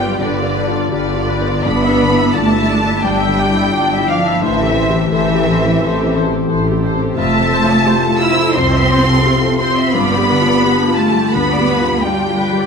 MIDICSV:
0, 0, Header, 1, 8, 480
1, 0, Start_track
1, 0, Tempo, 726392
1, 1096, Time_signature, 4, 2, 24, 8
1, 1096, Tempo, 689655
1, 6856, Tempo, 701754
1, 8723, End_track
2, 0, Start_track
2, 0, Title_t, "Violin section"
2, 0, Program_c, 0, 48
2, 0, Note_on_c, 0, 79, 61
2, 131, Note_on_c, 0, 74, 55
2, 136, Note_off_c, 0, 79, 0
2, 599, Note_off_c, 0, 74, 0
2, 610, Note_on_c, 0, 74, 60
2, 1086, Note_off_c, 0, 74, 0
2, 1089, Note_on_c, 0, 83, 69
2, 1572, Note_on_c, 0, 81, 73
2, 1573, Note_off_c, 0, 83, 0
2, 2052, Note_on_c, 0, 79, 78
2, 2057, Note_off_c, 0, 81, 0
2, 2780, Note_off_c, 0, 79, 0
2, 2780, Note_on_c, 0, 77, 65
2, 3023, Note_on_c, 0, 76, 76
2, 3024, Note_off_c, 0, 77, 0
2, 3492, Note_off_c, 0, 76, 0
2, 3511, Note_on_c, 0, 76, 72
2, 4210, Note_off_c, 0, 76, 0
2, 4933, Note_on_c, 0, 81, 92
2, 5620, Note_off_c, 0, 81, 0
2, 5641, Note_on_c, 0, 88, 81
2, 5880, Note_on_c, 0, 84, 80
2, 5888, Note_off_c, 0, 88, 0
2, 6594, Note_off_c, 0, 84, 0
2, 6620, Note_on_c, 0, 84, 72
2, 6853, Note_off_c, 0, 84, 0
2, 6857, Note_on_c, 0, 83, 87
2, 7569, Note_on_c, 0, 81, 69
2, 7574, Note_off_c, 0, 83, 0
2, 7809, Note_off_c, 0, 81, 0
2, 7812, Note_on_c, 0, 83, 74
2, 8289, Note_off_c, 0, 83, 0
2, 8289, Note_on_c, 0, 79, 69
2, 8723, Note_off_c, 0, 79, 0
2, 8723, End_track
3, 0, Start_track
3, 0, Title_t, "Violin section"
3, 0, Program_c, 1, 48
3, 0, Note_on_c, 1, 79, 66
3, 136, Note_off_c, 1, 79, 0
3, 142, Note_on_c, 1, 74, 57
3, 605, Note_off_c, 1, 74, 0
3, 613, Note_on_c, 1, 74, 59
3, 1088, Note_off_c, 1, 74, 0
3, 1108, Note_on_c, 1, 83, 65
3, 1583, Note_off_c, 1, 83, 0
3, 1590, Note_on_c, 1, 81, 72
3, 2065, Note_off_c, 1, 81, 0
3, 2070, Note_on_c, 1, 79, 79
3, 2787, Note_on_c, 1, 77, 65
3, 2789, Note_off_c, 1, 79, 0
3, 3025, Note_on_c, 1, 76, 63
3, 3028, Note_off_c, 1, 77, 0
3, 3494, Note_off_c, 1, 76, 0
3, 3513, Note_on_c, 1, 76, 70
3, 4211, Note_off_c, 1, 76, 0
3, 4950, Note_on_c, 1, 81, 72
3, 5629, Note_off_c, 1, 81, 0
3, 5667, Note_on_c, 1, 88, 77
3, 5901, Note_off_c, 1, 88, 0
3, 5902, Note_on_c, 1, 84, 82
3, 6608, Note_off_c, 1, 84, 0
3, 6616, Note_on_c, 1, 84, 67
3, 6852, Note_off_c, 1, 84, 0
3, 6855, Note_on_c, 1, 83, 70
3, 7571, Note_on_c, 1, 81, 71
3, 7573, Note_off_c, 1, 83, 0
3, 7800, Note_on_c, 1, 83, 74
3, 7811, Note_off_c, 1, 81, 0
3, 8283, Note_off_c, 1, 83, 0
3, 8284, Note_on_c, 1, 79, 70
3, 8723, Note_off_c, 1, 79, 0
3, 8723, End_track
4, 0, Start_track
4, 0, Title_t, "Viola section"
4, 0, Program_c, 2, 48
4, 10, Note_on_c, 2, 74, 44
4, 11, Note_on_c, 2, 65, 42
4, 131, Note_off_c, 2, 65, 0
4, 131, Note_off_c, 2, 74, 0
4, 132, Note_on_c, 2, 67, 41
4, 132, Note_on_c, 2, 71, 48
4, 243, Note_off_c, 2, 67, 0
4, 243, Note_off_c, 2, 71, 0
4, 249, Note_on_c, 2, 65, 42
4, 249, Note_on_c, 2, 74, 44
4, 369, Note_off_c, 2, 65, 0
4, 369, Note_off_c, 2, 74, 0
4, 370, Note_on_c, 2, 67, 47
4, 371, Note_on_c, 2, 71, 49
4, 490, Note_off_c, 2, 67, 0
4, 490, Note_off_c, 2, 71, 0
4, 490, Note_on_c, 2, 74, 44
4, 491, Note_on_c, 2, 65, 44
4, 608, Note_on_c, 2, 71, 43
4, 609, Note_off_c, 2, 74, 0
4, 610, Note_off_c, 2, 65, 0
4, 611, Note_on_c, 2, 67, 41
4, 721, Note_off_c, 2, 71, 0
4, 723, Note_off_c, 2, 67, 0
4, 734, Note_on_c, 2, 74, 43
4, 736, Note_on_c, 2, 65, 40
4, 854, Note_on_c, 2, 67, 43
4, 854, Note_on_c, 2, 71, 52
4, 855, Note_off_c, 2, 74, 0
4, 857, Note_off_c, 2, 65, 0
4, 971, Note_on_c, 2, 74, 44
4, 976, Note_on_c, 2, 65, 42
4, 977, Note_off_c, 2, 67, 0
4, 977, Note_off_c, 2, 71, 0
4, 1079, Note_off_c, 2, 74, 0
4, 1087, Note_on_c, 2, 74, 49
4, 1089, Note_on_c, 2, 62, 45
4, 1095, Note_off_c, 2, 65, 0
4, 1205, Note_off_c, 2, 74, 0
4, 1206, Note_off_c, 2, 62, 0
4, 1218, Note_on_c, 2, 64, 47
4, 1219, Note_on_c, 2, 76, 49
4, 1329, Note_on_c, 2, 74, 43
4, 1330, Note_on_c, 2, 62, 43
4, 1338, Note_off_c, 2, 64, 0
4, 1339, Note_off_c, 2, 76, 0
4, 1450, Note_on_c, 2, 64, 39
4, 1452, Note_on_c, 2, 76, 47
4, 1453, Note_off_c, 2, 62, 0
4, 1453, Note_off_c, 2, 74, 0
4, 1569, Note_on_c, 2, 74, 45
4, 1570, Note_on_c, 2, 62, 47
4, 1573, Note_off_c, 2, 64, 0
4, 1574, Note_off_c, 2, 76, 0
4, 1684, Note_off_c, 2, 74, 0
4, 1685, Note_off_c, 2, 62, 0
4, 1690, Note_on_c, 2, 64, 49
4, 1690, Note_on_c, 2, 76, 47
4, 1814, Note_off_c, 2, 64, 0
4, 1814, Note_off_c, 2, 76, 0
4, 1815, Note_on_c, 2, 74, 49
4, 1816, Note_on_c, 2, 62, 49
4, 1937, Note_off_c, 2, 62, 0
4, 1937, Note_off_c, 2, 74, 0
4, 1939, Note_on_c, 2, 76, 44
4, 1943, Note_on_c, 2, 64, 45
4, 2053, Note_on_c, 2, 62, 52
4, 2053, Note_on_c, 2, 74, 50
4, 2059, Note_off_c, 2, 76, 0
4, 2061, Note_off_c, 2, 64, 0
4, 2168, Note_off_c, 2, 62, 0
4, 2168, Note_off_c, 2, 74, 0
4, 2179, Note_on_c, 2, 64, 47
4, 2180, Note_on_c, 2, 76, 47
4, 2298, Note_on_c, 2, 62, 56
4, 2298, Note_on_c, 2, 74, 49
4, 2299, Note_off_c, 2, 64, 0
4, 2300, Note_off_c, 2, 76, 0
4, 2419, Note_off_c, 2, 62, 0
4, 2419, Note_off_c, 2, 74, 0
4, 2419, Note_on_c, 2, 64, 47
4, 2421, Note_on_c, 2, 76, 47
4, 2540, Note_off_c, 2, 64, 0
4, 2541, Note_off_c, 2, 76, 0
4, 2545, Note_on_c, 2, 74, 46
4, 2546, Note_on_c, 2, 62, 49
4, 2655, Note_off_c, 2, 74, 0
4, 2656, Note_off_c, 2, 62, 0
4, 2666, Note_on_c, 2, 64, 47
4, 2668, Note_on_c, 2, 76, 49
4, 2783, Note_on_c, 2, 74, 53
4, 2785, Note_on_c, 2, 62, 54
4, 2786, Note_off_c, 2, 64, 0
4, 2786, Note_off_c, 2, 76, 0
4, 2904, Note_on_c, 2, 64, 50
4, 2905, Note_off_c, 2, 74, 0
4, 2906, Note_off_c, 2, 62, 0
4, 2906, Note_on_c, 2, 76, 48
4, 3025, Note_off_c, 2, 64, 0
4, 3027, Note_off_c, 2, 76, 0
4, 3029, Note_on_c, 2, 69, 50
4, 3031, Note_on_c, 2, 72, 55
4, 3138, Note_off_c, 2, 69, 0
4, 3141, Note_off_c, 2, 72, 0
4, 3146, Note_on_c, 2, 69, 46
4, 3148, Note_on_c, 2, 67, 51
4, 3261, Note_off_c, 2, 69, 0
4, 3267, Note_off_c, 2, 67, 0
4, 3269, Note_on_c, 2, 69, 46
4, 3271, Note_on_c, 2, 72, 49
4, 3381, Note_off_c, 2, 69, 0
4, 3388, Note_off_c, 2, 72, 0
4, 3389, Note_on_c, 2, 67, 45
4, 3390, Note_on_c, 2, 69, 51
4, 3505, Note_off_c, 2, 67, 0
4, 3506, Note_off_c, 2, 69, 0
4, 3513, Note_on_c, 2, 72, 51
4, 3514, Note_on_c, 2, 69, 56
4, 3619, Note_off_c, 2, 72, 0
4, 3620, Note_off_c, 2, 69, 0
4, 3630, Note_on_c, 2, 69, 49
4, 3631, Note_on_c, 2, 67, 51
4, 3743, Note_off_c, 2, 69, 0
4, 3746, Note_off_c, 2, 67, 0
4, 3751, Note_on_c, 2, 69, 50
4, 3751, Note_on_c, 2, 72, 59
4, 3867, Note_off_c, 2, 69, 0
4, 3867, Note_off_c, 2, 72, 0
4, 3880, Note_on_c, 2, 67, 48
4, 3880, Note_on_c, 2, 69, 51
4, 3984, Note_off_c, 2, 69, 0
4, 3990, Note_on_c, 2, 72, 53
4, 3991, Note_off_c, 2, 67, 0
4, 3993, Note_on_c, 2, 69, 57
4, 4098, Note_off_c, 2, 72, 0
4, 4099, Note_off_c, 2, 69, 0
4, 4112, Note_on_c, 2, 69, 56
4, 4115, Note_on_c, 2, 67, 57
4, 4221, Note_off_c, 2, 69, 0
4, 4227, Note_off_c, 2, 67, 0
4, 4228, Note_on_c, 2, 72, 55
4, 4229, Note_on_c, 2, 69, 59
4, 4339, Note_off_c, 2, 69, 0
4, 4343, Note_off_c, 2, 72, 0
4, 4346, Note_on_c, 2, 67, 51
4, 4347, Note_on_c, 2, 69, 51
4, 4455, Note_off_c, 2, 69, 0
4, 4461, Note_off_c, 2, 67, 0
4, 4462, Note_on_c, 2, 72, 55
4, 4464, Note_on_c, 2, 69, 48
4, 4571, Note_off_c, 2, 69, 0
4, 4571, Note_off_c, 2, 72, 0
4, 4587, Note_on_c, 2, 67, 46
4, 4588, Note_on_c, 2, 69, 48
4, 4696, Note_off_c, 2, 69, 0
4, 4701, Note_off_c, 2, 67, 0
4, 4704, Note_on_c, 2, 69, 51
4, 4704, Note_on_c, 2, 72, 56
4, 4817, Note_off_c, 2, 69, 0
4, 4820, Note_off_c, 2, 72, 0
4, 4824, Note_on_c, 2, 67, 54
4, 4825, Note_on_c, 2, 69, 50
4, 4940, Note_off_c, 2, 67, 0
4, 4941, Note_off_c, 2, 69, 0
4, 4945, Note_on_c, 2, 65, 62
4, 4946, Note_on_c, 2, 76, 60
4, 5052, Note_off_c, 2, 65, 0
4, 5069, Note_on_c, 2, 69, 57
4, 5181, Note_off_c, 2, 69, 0
4, 5183, Note_on_c, 2, 72, 59
4, 5295, Note_off_c, 2, 76, 0
4, 5297, Note_off_c, 2, 72, 0
4, 5303, Note_on_c, 2, 76, 57
4, 5416, Note_off_c, 2, 76, 0
4, 5427, Note_on_c, 2, 72, 57
4, 5538, Note_off_c, 2, 72, 0
4, 5546, Note_on_c, 2, 69, 62
4, 5657, Note_off_c, 2, 69, 0
4, 5662, Note_on_c, 2, 65, 65
4, 5776, Note_off_c, 2, 65, 0
4, 5784, Note_on_c, 2, 69, 55
4, 5899, Note_off_c, 2, 69, 0
4, 5902, Note_on_c, 2, 72, 62
4, 6011, Note_off_c, 2, 72, 0
4, 6025, Note_on_c, 2, 76, 58
4, 6141, Note_off_c, 2, 76, 0
4, 6149, Note_on_c, 2, 72, 58
4, 6260, Note_on_c, 2, 69, 55
4, 6263, Note_off_c, 2, 72, 0
4, 6378, Note_off_c, 2, 69, 0
4, 6381, Note_on_c, 2, 65, 55
4, 6497, Note_on_c, 2, 69, 53
4, 6498, Note_off_c, 2, 65, 0
4, 6616, Note_off_c, 2, 69, 0
4, 6624, Note_on_c, 2, 72, 60
4, 6740, Note_off_c, 2, 72, 0
4, 6743, Note_on_c, 2, 76, 55
4, 6860, Note_off_c, 2, 76, 0
4, 6866, Note_on_c, 2, 65, 66
4, 6867, Note_on_c, 2, 74, 52
4, 6972, Note_off_c, 2, 65, 0
4, 6989, Note_on_c, 2, 67, 57
4, 7101, Note_off_c, 2, 67, 0
4, 7108, Note_on_c, 2, 71, 53
4, 7209, Note_off_c, 2, 74, 0
4, 7218, Note_on_c, 2, 74, 50
4, 7220, Note_off_c, 2, 71, 0
4, 7335, Note_off_c, 2, 74, 0
4, 7342, Note_on_c, 2, 71, 55
4, 7457, Note_off_c, 2, 71, 0
4, 7463, Note_on_c, 2, 67, 53
4, 7578, Note_off_c, 2, 67, 0
4, 7587, Note_on_c, 2, 65, 56
4, 7699, Note_off_c, 2, 65, 0
4, 7704, Note_on_c, 2, 67, 53
4, 7817, Note_off_c, 2, 67, 0
4, 7817, Note_on_c, 2, 71, 57
4, 7925, Note_off_c, 2, 71, 0
4, 7939, Note_on_c, 2, 74, 52
4, 8048, Note_on_c, 2, 71, 51
4, 8054, Note_off_c, 2, 74, 0
4, 8168, Note_off_c, 2, 71, 0
4, 8174, Note_on_c, 2, 67, 49
4, 8291, Note_off_c, 2, 67, 0
4, 8296, Note_on_c, 2, 65, 52
4, 8414, Note_off_c, 2, 65, 0
4, 8418, Note_on_c, 2, 67, 47
4, 8532, Note_on_c, 2, 71, 53
4, 8536, Note_off_c, 2, 67, 0
4, 8654, Note_off_c, 2, 71, 0
4, 8660, Note_on_c, 2, 74, 51
4, 8723, Note_off_c, 2, 74, 0
4, 8723, End_track
5, 0, Start_track
5, 0, Title_t, "Felt piano"
5, 0, Program_c, 3, 0
5, 0, Control_c, 3, 64, 127
5, 0, Note_on_c, 3, 43, 50
5, 0, Note_on_c, 3, 59, 47
5, 0, Note_on_c, 3, 65, 38
5, 0, Note_on_c, 3, 67, 34
5, 72, Note_off_c, 3, 65, 0
5, 110, Note_off_c, 3, 43, 0
5, 128, Note_on_c, 3, 50, 43
5, 228, Note_off_c, 3, 59, 0
5, 285, Note_on_c, 3, 59, 39
5, 384, Note_off_c, 3, 50, 0
5, 448, Note_on_c, 3, 65, 41
5, 543, Note_off_c, 3, 59, 0
5, 607, Note_off_c, 3, 67, 0
5, 607, Note_on_c, 3, 67, 38
5, 705, Note_off_c, 3, 65, 0
5, 770, Note_off_c, 3, 67, 0
5, 774, Note_on_c, 3, 65, 41
5, 935, Note_on_c, 3, 59, 41
5, 1034, Note_off_c, 3, 65, 0
5, 1096, Note_off_c, 3, 59, 0
5, 1097, Note_on_c, 3, 43, 51
5, 1110, Control_c, 3, 64, 0
5, 1224, Control_c, 3, 64, 127
5, 1256, Note_on_c, 3, 62, 45
5, 1409, Note_on_c, 3, 64, 42
5, 1511, Note_off_c, 3, 62, 0
5, 1577, Note_on_c, 3, 65, 37
5, 1668, Note_off_c, 3, 64, 0
5, 1736, Note_on_c, 3, 64, 45
5, 1737, Note_off_c, 3, 65, 0
5, 1903, Note_on_c, 3, 62, 46
5, 1994, Note_off_c, 3, 64, 0
5, 2032, Note_off_c, 3, 43, 0
5, 2059, Note_on_c, 3, 43, 46
5, 2158, Note_off_c, 3, 62, 0
5, 2223, Note_on_c, 3, 50, 43
5, 2373, Note_on_c, 3, 64, 41
5, 2478, Note_off_c, 3, 50, 0
5, 2536, Note_on_c, 3, 65, 35
5, 2634, Note_off_c, 3, 64, 0
5, 2700, Note_off_c, 3, 65, 0
5, 2706, Note_on_c, 3, 64, 45
5, 2863, Note_on_c, 3, 62, 45
5, 2964, Note_off_c, 3, 64, 0
5, 2998, Note_off_c, 3, 43, 0
5, 3021, Note_on_c, 3, 45, 59
5, 3025, Note_off_c, 3, 62, 0
5, 3039, Control_c, 3, 64, 0
5, 3152, Control_c, 3, 64, 127
5, 3191, Note_on_c, 3, 60, 47
5, 3352, Note_on_c, 3, 67, 45
5, 3443, Note_off_c, 3, 60, 0
5, 3507, Note_on_c, 3, 69, 37
5, 3602, Note_off_c, 3, 67, 0
5, 3664, Note_off_c, 3, 69, 0
5, 3665, Note_on_c, 3, 67, 45
5, 3822, Note_on_c, 3, 60, 50
5, 3919, Note_off_c, 3, 67, 0
5, 3952, Note_off_c, 3, 45, 0
5, 3982, Note_on_c, 3, 52, 47
5, 4078, Note_off_c, 3, 60, 0
5, 4139, Note_on_c, 3, 60, 48
5, 4236, Note_off_c, 3, 52, 0
5, 4303, Note_on_c, 3, 67, 48
5, 4393, Note_off_c, 3, 60, 0
5, 4460, Note_on_c, 3, 69, 37
5, 4554, Note_off_c, 3, 67, 0
5, 4615, Note_on_c, 3, 67, 49
5, 4617, Note_off_c, 3, 69, 0
5, 4781, Note_on_c, 3, 60, 43
5, 4871, Note_off_c, 3, 67, 0
5, 4934, Note_on_c, 3, 41, 62
5, 4939, Note_off_c, 3, 60, 0
5, 4949, Control_c, 3, 64, 0
5, 5071, Control_c, 3, 64, 127
5, 5091, Note_on_c, 3, 60, 51
5, 5262, Note_on_c, 3, 65, 52
5, 5346, Note_off_c, 3, 60, 0
5, 5414, Note_on_c, 3, 67, 38
5, 5510, Note_off_c, 3, 65, 0
5, 5571, Note_off_c, 3, 67, 0
5, 5573, Note_on_c, 3, 65, 53
5, 5734, Note_on_c, 3, 60, 56
5, 5829, Note_off_c, 3, 65, 0
5, 5863, Note_off_c, 3, 41, 0
5, 5901, Note_on_c, 3, 48, 47
5, 5992, Note_off_c, 3, 60, 0
5, 6062, Note_on_c, 3, 60, 46
5, 6156, Note_off_c, 3, 48, 0
5, 6228, Note_on_c, 3, 65, 50
5, 6316, Note_off_c, 3, 60, 0
5, 6386, Note_on_c, 3, 67, 41
5, 6477, Note_off_c, 3, 65, 0
5, 6540, Note_off_c, 3, 67, 0
5, 6540, Note_on_c, 3, 65, 49
5, 6696, Note_on_c, 3, 60, 44
5, 6794, Note_off_c, 3, 65, 0
5, 6856, Note_off_c, 3, 60, 0
5, 6863, Note_on_c, 3, 43, 62
5, 6868, Control_c, 3, 64, 0
5, 6986, Control_c, 3, 64, 127
5, 7021, Note_on_c, 3, 55, 51
5, 7182, Note_on_c, 3, 65, 49
5, 7273, Note_off_c, 3, 55, 0
5, 7352, Note_on_c, 3, 67, 39
5, 7433, Note_off_c, 3, 65, 0
5, 7503, Note_off_c, 3, 67, 0
5, 7506, Note_on_c, 3, 65, 49
5, 7661, Note_on_c, 3, 55, 51
5, 7755, Note_off_c, 3, 65, 0
5, 7788, Note_off_c, 3, 43, 0
5, 7825, Note_on_c, 3, 50, 46
5, 7911, Note_off_c, 3, 55, 0
5, 7984, Note_on_c, 3, 55, 42
5, 8072, Note_off_c, 3, 50, 0
5, 8138, Note_on_c, 3, 65, 50
5, 8232, Note_off_c, 3, 55, 0
5, 8309, Note_on_c, 3, 67, 39
5, 8391, Note_off_c, 3, 65, 0
5, 8461, Note_off_c, 3, 67, 0
5, 8469, Note_on_c, 3, 65, 45
5, 8622, Note_on_c, 3, 55, 41
5, 8721, Note_off_c, 3, 65, 0
5, 8723, Note_off_c, 3, 55, 0
5, 8723, End_track
6, 0, Start_track
6, 0, Title_t, "Cello section"
6, 0, Program_c, 4, 48
6, 0, Note_on_c, 4, 55, 81
6, 137, Note_off_c, 4, 55, 0
6, 138, Note_on_c, 4, 50, 68
6, 608, Note_off_c, 4, 50, 0
6, 616, Note_on_c, 4, 50, 67
6, 1090, Note_off_c, 4, 50, 0
6, 1106, Note_on_c, 4, 59, 85
6, 1582, Note_off_c, 4, 59, 0
6, 1583, Note_on_c, 4, 57, 87
6, 2062, Note_off_c, 4, 57, 0
6, 2070, Note_on_c, 4, 55, 77
6, 2787, Note_on_c, 4, 53, 75
6, 2789, Note_off_c, 4, 55, 0
6, 3028, Note_off_c, 4, 53, 0
6, 3030, Note_on_c, 4, 52, 81
6, 3504, Note_off_c, 4, 52, 0
6, 3512, Note_on_c, 4, 52, 89
6, 4211, Note_off_c, 4, 52, 0
6, 4946, Note_on_c, 4, 57, 89
6, 5627, Note_off_c, 4, 57, 0
6, 5658, Note_on_c, 4, 64, 83
6, 5897, Note_off_c, 4, 64, 0
6, 5901, Note_on_c, 4, 60, 92
6, 6615, Note_off_c, 4, 60, 0
6, 6623, Note_on_c, 4, 60, 80
6, 6855, Note_off_c, 4, 60, 0
6, 6861, Note_on_c, 4, 59, 88
6, 7576, Note_off_c, 4, 59, 0
6, 7581, Note_on_c, 4, 57, 85
6, 7811, Note_off_c, 4, 57, 0
6, 7820, Note_on_c, 4, 59, 90
6, 8293, Note_off_c, 4, 59, 0
6, 8302, Note_on_c, 4, 55, 78
6, 8723, Note_off_c, 4, 55, 0
6, 8723, End_track
7, 0, Start_track
7, 0, Title_t, "Harp"
7, 0, Program_c, 5, 46
7, 0, Note_on_c, 5, 43, 56
7, 0, Note_on_c, 5, 50, 38
7, 0, Note_on_c, 5, 59, 46
7, 0, Note_on_c, 5, 65, 46
7, 131, Note_off_c, 5, 43, 0
7, 139, Note_on_c, 5, 43, 46
7, 366, Note_off_c, 5, 50, 0
7, 374, Note_on_c, 5, 50, 43
7, 607, Note_off_c, 5, 65, 0
7, 615, Note_on_c, 5, 65, 39
7, 849, Note_off_c, 5, 59, 0
7, 857, Note_on_c, 5, 59, 42
7, 1093, Note_off_c, 5, 43, 0
7, 1101, Note_on_c, 5, 43, 58
7, 1118, Note_off_c, 5, 50, 0
7, 1119, Note_off_c, 5, 65, 0
7, 1342, Note_on_c, 5, 50, 44
7, 1577, Note_on_c, 5, 67, 47
7, 1818, Note_on_c, 5, 62, 48
7, 2049, Note_off_c, 5, 43, 0
7, 2057, Note_on_c, 5, 43, 50
7, 2290, Note_off_c, 5, 50, 0
7, 2298, Note_on_c, 5, 50, 47
7, 2776, Note_off_c, 5, 62, 0
7, 2784, Note_on_c, 5, 62, 45
7, 3027, Note_on_c, 5, 45, 59
7, 3045, Note_off_c, 5, 43, 0
7, 3045, Note_off_c, 5, 50, 0
7, 3046, Note_off_c, 5, 62, 0
7, 3047, Note_off_c, 5, 59, 0
7, 3270, Note_on_c, 5, 52, 45
7, 3503, Note_on_c, 5, 64, 53
7, 3743, Note_on_c, 5, 60, 55
7, 3975, Note_off_c, 5, 45, 0
7, 3984, Note_on_c, 5, 45, 53
7, 4220, Note_off_c, 5, 52, 0
7, 4229, Note_on_c, 5, 52, 46
7, 4291, Note_off_c, 5, 67, 0
7, 4454, Note_off_c, 5, 64, 0
7, 4462, Note_on_c, 5, 64, 48
7, 4695, Note_off_c, 5, 60, 0
7, 4703, Note_on_c, 5, 60, 46
7, 4945, Note_on_c, 5, 41, 66
7, 4956, Note_off_c, 5, 45, 0
7, 4959, Note_off_c, 5, 52, 0
7, 5179, Note_on_c, 5, 48, 49
7, 5411, Note_off_c, 5, 64, 0
7, 5420, Note_on_c, 5, 64, 52
7, 5649, Note_off_c, 5, 60, 0
7, 5657, Note_on_c, 5, 60, 58
7, 5893, Note_off_c, 5, 41, 0
7, 5901, Note_on_c, 5, 41, 60
7, 6133, Note_off_c, 5, 48, 0
7, 6141, Note_on_c, 5, 48, 48
7, 6378, Note_off_c, 5, 64, 0
7, 6386, Note_on_c, 5, 64, 52
7, 6617, Note_off_c, 5, 60, 0
7, 6626, Note_on_c, 5, 60, 47
7, 6869, Note_on_c, 5, 43, 64
7, 6877, Note_off_c, 5, 48, 0
7, 6879, Note_off_c, 5, 41, 0
7, 6880, Note_off_c, 5, 60, 0
7, 6880, Note_off_c, 5, 64, 0
7, 7108, Note_on_c, 5, 50, 51
7, 7341, Note_on_c, 5, 62, 55
7, 7583, Note_on_c, 5, 55, 51
7, 7815, Note_off_c, 5, 43, 0
7, 7823, Note_on_c, 5, 43, 57
7, 8048, Note_off_c, 5, 50, 0
7, 8056, Note_on_c, 5, 50, 43
7, 8292, Note_off_c, 5, 62, 0
7, 8301, Note_on_c, 5, 62, 40
7, 8533, Note_off_c, 5, 55, 0
7, 8542, Note_on_c, 5, 55, 45
7, 8723, Note_off_c, 5, 43, 0
7, 8723, Note_off_c, 5, 50, 0
7, 8723, Note_off_c, 5, 55, 0
7, 8723, Note_off_c, 5, 62, 0
7, 8723, End_track
8, 0, Start_track
8, 0, Title_t, "Double bass section"
8, 0, Program_c, 6, 48
8, 0, Note_on_c, 6, 31, 61
8, 77, Note_off_c, 6, 31, 0
8, 136, Note_on_c, 6, 31, 58
8, 554, Note_off_c, 6, 31, 0
8, 610, Note_on_c, 6, 31, 62
8, 1040, Note_off_c, 6, 31, 0
8, 1099, Note_on_c, 6, 31, 66
8, 1522, Note_off_c, 6, 31, 0
8, 1576, Note_on_c, 6, 31, 65
8, 2002, Note_off_c, 6, 31, 0
8, 2059, Note_on_c, 6, 31, 63
8, 2484, Note_off_c, 6, 31, 0
8, 2541, Note_on_c, 6, 31, 62
8, 2969, Note_off_c, 6, 31, 0
8, 3027, Note_on_c, 6, 33, 67
8, 3448, Note_off_c, 6, 33, 0
8, 3507, Note_on_c, 6, 33, 72
8, 3927, Note_off_c, 6, 33, 0
8, 3984, Note_on_c, 6, 33, 63
8, 4402, Note_off_c, 6, 33, 0
8, 4459, Note_on_c, 6, 33, 67
8, 4880, Note_off_c, 6, 33, 0
8, 4942, Note_on_c, 6, 29, 72
8, 5335, Note_off_c, 6, 29, 0
8, 5898, Note_on_c, 6, 36, 74
8, 6299, Note_off_c, 6, 36, 0
8, 6861, Note_on_c, 6, 31, 71
8, 7256, Note_off_c, 6, 31, 0
8, 7817, Note_on_c, 6, 38, 62
8, 8211, Note_off_c, 6, 38, 0
8, 8723, End_track
0, 0, End_of_file